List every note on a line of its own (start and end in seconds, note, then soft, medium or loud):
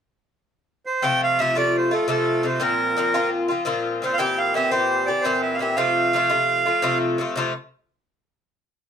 0.86 1.04 C5 medium
1.02 1.38 C3 medium
1.02 1.39 F3 medium
1.02 1.39 A3 medium
1.02 1.41 F4 medium
1.02 1.21 G5 medium
1.24 1.40 F5 medium
1.39 1.56 C3 medium
1.39 1.56 F3 medium
1.39 1.55 A3 medium
1.39 1.54 F4 medium
1.39 1.56 E5 medium
1.55 1.93 C3 soft
1.55 1.93 F3 soft
1.55 1.92 A3 medium
1.55 1.91 F4 soft
1.55 1.77 D5 medium
1.77 1.92 C5 medium
1.91 2.08 F3 soft
1.91 2.07 A3 soft
1.91 2.08 F4 medium
1.91 2.07 A4 medium
2.08 2.42 C3 medium
2.08 2.43 F3 medium
2.08 2.43 A3 medium
2.08 2.44 F4 medium
2.08 2.46 A4 medium
2.43 2.59 C3 medium
2.43 2.59 F3 soft
2.43 2.60 A3 soft
2.43 2.60 F4 soft
2.43 2.62 C5 medium
2.60 2.95 A#2 medium
2.60 2.96 F3 medium
2.60 2.98 C4 medium
2.60 2.97 F4 medium
2.60 3.30 A#4 medium
2.97 3.13 A#2 medium
2.97 3.14 F3 medium
2.97 3.13 C4 medium
2.97 3.13 F4 medium
3.14 3.51 A#2 soft
3.14 3.50 F3 medium
3.14 3.50 C4 medium
3.14 3.47 F4 medium
3.48 3.64 F3 soft
3.48 3.65 C4 soft
3.48 3.66 F4 soft
3.65 4.01 A#2 medium
3.65 4.02 F3 medium
3.65 4.03 C4 medium
3.65 4.03 F4 medium
4.02 4.17 A#2 medium
4.02 4.18 F3 soft
4.02 4.18 C4 medium
4.02 4.20 F4 medium
4.02 4.16 C5 medium
4.14 4.18 F5 medium
4.18 4.53 A#2 medium
4.18 4.54 E3 medium
4.18 4.56 C4 medium
4.18 4.56 G4 medium
4.18 4.39 G5 medium
4.38 4.54 F5 medium
4.54 4.71 A#2 medium
4.54 4.72 E3 medium
4.54 4.71 C4 medium
4.54 4.70 G4 medium
4.54 4.71 E5 medium
4.71 5.09 A#2 soft
4.71 5.09 E3 soft
4.71 5.09 C4 medium
4.71 5.07 G4 medium
4.71 5.09 C5 medium
5.06 5.24 E3 soft
5.06 5.24 C4 soft
5.06 5.25 G4 soft
5.06 5.24 D5 medium
5.22 5.58 A#2 medium
5.22 5.59 E3 medium
5.22 5.61 C4 medium
5.22 5.41 C5 medium
5.26 5.61 G4 medium
5.42 5.56 E5 medium
5.54 5.60 F5 medium
5.59 5.76 A#2 soft
5.59 5.77 E3 medium
5.59 5.77 C4 soft
5.59 5.78 G4 medium
5.59 5.76 E5 medium
5.76 6.12 C3 medium
5.76 6.14 F3 medium
5.76 6.15 A3 medium
5.76 6.16 F4 medium
5.76 6.98 F5 medium
6.13 6.30 C3 medium
6.13 6.29 F3 medium
6.13 6.28 A3 medium
6.13 6.28 F4 medium
6.30 6.67 C3 soft
6.30 6.68 F3 medium
6.30 6.66 A3 medium
6.30 6.65 F4 medium
6.66 6.81 F3 soft
6.66 6.82 A3 soft
6.66 6.82 F4 soft
6.82 7.17 C3 medium
6.82 7.19 F3 medium
6.82 7.20 A3 medium
6.82 7.21 F4 medium
7.18 7.34 C3 medium
7.18 7.36 F3 soft
7.18 7.36 A3 soft
7.18 7.37 F4 medium
7.36 7.52 C3 medium
7.36 7.53 F3 medium
7.36 7.53 A3 medium
7.36 7.53 F4 medium